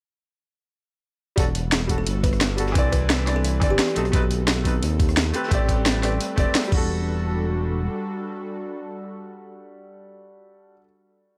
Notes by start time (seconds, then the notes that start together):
1.36 E1 G3 D4 F#4 A4, kick, closed hi-hat
1.55 closed hi-hat
1.72 snare, closed hi-hat
1.88 G3 D4 F#4 A4, kick, closed hi-hat
1.98 A4
2.07 G1, closed hi-hat
2.23 B4, kick, closed hi-hat
2.33 cross-stick, closed hi-hat
2.41 snare, closed hi-hat
2.57 G3 D4 F#4 A4, closed hi-hat
2.67 snare
2.72 C2 E3 C4 B4, kick, closed hi-hat
2.76 D4 D5
2.92 B4, kick, closed hi-hat
3.09 snare, closed hi-hat
3.25 E3 C4 D4 D5, cross-stick, snare, closed hi-hat
3.36 A4
3.44 closed hi-hat
3.60 G1 E3 C4 D4 D5, kick, closed hi-hat
3.70 G1 G4
3.79 snare, closed hi-hat
3.88 cross-stick, closed hi-hat
3.95 B1 D#3 A3 C4 D#4 A4, closed hi-hat
4.05 cross-stick, closed hi-hat
4.12 B1 A3 C4 D#4 B4, kick, closed hi-hat
4.31 closed hi-hat
4.47 snare, closed hi-hat
4.64 A3 C4 D#4 B4, kick, closed hi-hat
4.82 D#2, closed hi-hat
5.00 kick, closed hi-hat
5.08 cross-stick, closed hi-hat
5.17 snare, closed hi-hat
5.32 G3 A3 C4 G4 B4, closed hi-hat
5.43 snare
5.48 A1 A3 C4, kick, closed hi-hat
5.52 G4 D5
5.69 kick, closed hi-hat
5.86 snare, closed hi-hat
6.02 A3 C4 G4 D5, cross-stick, snare, closed hi-hat, open hi-hat
6.21 closed hi-hat
6.36 E1 A3 C4 G4 D5, kick, closed hi-hat
6.54 snare, closed hi-hat
6.64 G3, cross-stick, closed hi-hat
6.71 E1 G3 D4 F#4 A4, kick, crash
6.77 A4